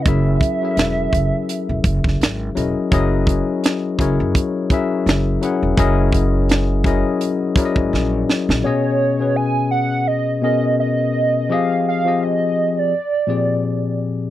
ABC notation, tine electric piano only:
X:1
M:4/4
L:1/16
Q:"Swing 16ths" 1/4=84
K:F#mix
V:1 name="Tine electric piano"
[F,CEGAe]3 [F,CEG=A^Ae]6- [F,CEG=A^Ae] z4 [F,CEGAd]2 | [F,CEGAd]4- [F,CEGAd] z [F,CEGAc]4 [F,CEGAe]4 [F,CEGAf]2 | [F,CEGAd]4- [F,CEGAd] z [F,CEGAd]4 [F,CEGA=d^d]4- [F,CEGA=d^d] z | [B,,B,CGd]3 [B,,B,CGB]6 z [B,,B,CGA]4- [B,,B,CGA] z |
[=F,=C=G_A_e]3 [F,CGAe]4- [F,CGAe] z2 [^A,,^E,^B,G^G=d]4- [A,,E,B,=G^Gd] z |]